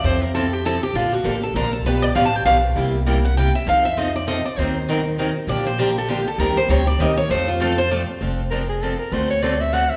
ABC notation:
X:1
M:3/4
L:1/8
Q:"Swing" 1/4=198
K:F
V:1 name="Soprano saxophone"
z6 | [K:Bb] z6 | z6 | z6 |
z6 | z6 | z6 | z6 |
z6 | [K:F] z2 B _A =A B | c _d =d e ^f e |]
V:2 name="Steel-string acoustic guitar"
c B A G A G | [K:Bb] F _G =G A B A | =B d (3f a g f z | z3 _g =g =e |
f =e _e d e d | c2 z4 | d c B A G A | B c _d =d e _d |
c F A c d z | [K:F] z6 | z6 |]
V:3 name="Steel-string acoustic guitar"
[F,CEA] z [F,CEA] z [F,CEA] z | [K:Bb] [D,F,B,DA] z [D,F,B,DA] z [D,F,B,DA] z | [=B,,F,=B,DG=B] z [B,,F,B,DGB] z [B,,F,B,DGB] z | [C,G,B,=EG] z [C,G,B,EG] z [C,G,B,EG] z |
[F,CEA] z [F,CEA] z [F,CEA] z | [E,_G,CEB] z [E,G,CEB] z [E,G,CEB] z | [D,F,B,DG] z [D,F,B,DG] z [D,F,B,DG] z | [E,G,CGB] z [E,G,CGB] z [E,G,CGB] z |
[F,A,CFA] z [F,A,CFA] z [F,A,CFA] z | [K:F] [F,CDA] z [F,CDA] z [F,CDA] z | [D,A,C^FA] z [D,A,CFA] z [D,A,CFA] z |]
V:4 name="Upright bass" clef=bass
F,,6 | [K:Bb] B,,,2 A,,,2 B,,,2 | =B,,,2 A,,,2 B,,,2 | C,,6 |
F,,6 | E,,6 | B,,,6 | E,,2 D,,2 E,,2 |
F,,6 | [K:F] F,,,6 | D,,6 |]